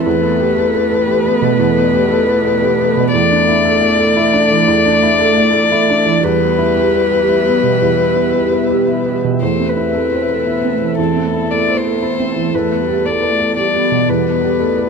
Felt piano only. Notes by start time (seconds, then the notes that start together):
0.06 E2
0.23 B3
0.40 G4
0.56 A4
0.74 B4
0.90 A4
1.08 G4
1.25 B3
1.42 B2
1.59 E2
1.77 B3
1.94 G4
2.10 A4
2.27 B4
2.45 A4
2.62 G4
2.80 B3
2.97 B2
3.14 E2
3.31 D4
3.48 E4
3.65 A4
3.81 D5
3.99 A4
4.16 E4
4.33 D4
4.51 E3
4.68 E2
4.85 D4
5.03 E4
5.20 A4
5.38 D5
5.55 A4
5.72 E4
5.90 D4
6.06 E3
6.24 E2
6.41 B3
6.58 E4
6.76 G4
6.94 B4
7.11 G4
7.28 E4
7.47 B3
7.63 B2
7.82 E2
7.99 B3
8.16 E4
8.35 G4
8.52 B4
8.70 G4
8.88 E4
9.06 B3
9.24 B2
9.42 E2
9.59 C4
9.77 E4
9.94 A4
10.12 C5
10.30 A4
10.47 E4
10.64 C4
10.81 E3
10.98 E2
11.16 C4
11.33 E4
11.51 A4
11.68 C5
11.85 A4
12.02 E4
12.20 C4
12.36 E3
12.54 E2
12.71 B3
12.88 G4
13.06 A4
13.22 B4
13.39 A4
13.57 G4
13.74 B3
13.91 B2
14.09 E2
14.27 B3
14.43 G4
14.60 A4
14.77 B4